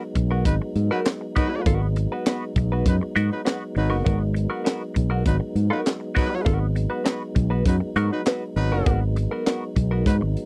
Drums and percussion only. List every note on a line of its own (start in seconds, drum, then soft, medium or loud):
0.15 kick medium
0.15 closed hi-hat medium
0.45 kick medium
0.45 closed hi-hat loud
0.76 closed hi-hat medium
1.05 snare loud
1.05 clap medium
1.05 closed hi-hat medium
1.36 kick loud
1.36 closed hi-hat medium
1.66 kick loud
1.66 closed hi-hat medium
1.96 closed hi-hat medium
2.26 snare loud
2.26 clap loud
2.26 closed hi-hat loud
2.56 kick medium
2.56 closed hi-hat medium
2.86 kick loud
2.86 closed hi-hat loud
3.16 closed hi-hat medium
3.46 snare loud
3.46 clap medium
3.46 closed hi-hat medium
3.76 open hi-hat medium
4.06 kick loud
4.06 closed hi-hat medium
4.36 closed hi-hat medium
4.66 snare loud
4.66 clap medium
4.66 closed hi-hat loud
4.96 kick medium
4.96 closed hi-hat medium
5.26 kick medium
5.26 closed hi-hat medium
5.56 closed hi-hat medium
5.86 snare loud
5.86 clap medium
5.86 closed hi-hat medium
6.16 kick loud
6.16 open hi-hat medium
6.46 kick loud
6.46 closed hi-hat loud
6.76 closed hi-hat medium
7.06 snare loud
7.06 clap medium
7.06 closed hi-hat loud
7.36 kick medium
7.36 closed hi-hat medium
7.66 kick medium
7.66 closed hi-hat loud
7.96 closed hi-hat medium
8.26 snare loud
8.26 clap medium
8.26 closed hi-hat medium
8.56 open hi-hat medium
8.86 kick loud
8.86 closed hi-hat loud
9.16 closed hi-hat medium
9.46 snare loud
9.46 clap medium
9.46 closed hi-hat medium
9.76 kick medium
9.76 closed hi-hat medium
10.06 kick medium
10.06 closed hi-hat loud
10.37 closed hi-hat medium